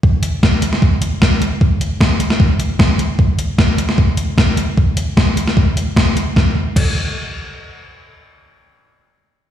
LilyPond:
\new DrumStaff \with { instrumentName = "Drums" } \drummode { \time 4/4 \tempo 4 = 151 bd8 hh8 <bd sn>8 hh16 sn16 bd8 hh8 <bd sn>8 hh8 | bd8 hh8 <bd sn>8 hh16 sn16 bd8 hh8 <bd sn>8 hh8 | bd8 hh8 <bd sn>8 hh16 sn16 bd8 hh8 <bd sn>8 hh8 | bd8 hh8 <bd sn>8 hh16 sn16 bd8 hh8 <bd sn>8 hh8 |
<bd sn>4 <cymc bd>4 r4 r4 | r4 r4 r4 r4 | }